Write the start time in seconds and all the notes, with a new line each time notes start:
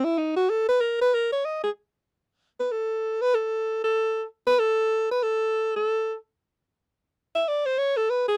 0.04 E4
0.18 D#4
0.36 F#4
0.50 A4
0.68 B4
0.81 A#4
1.01 B4
1.14 A#4
1.32 C#5
1.45 D#5
1.64 G#4
2.60 B4
2.71 A4
3.21 B4
3.34 A4
3.84 A4
4.47 B4
4.59 A4
5.11 B4
5.23 A4
5.76 A4
7.35 E5
7.48 D5
7.66 C5
7.78 C#5
7.97 A4
8.10 B4
8.28 G#4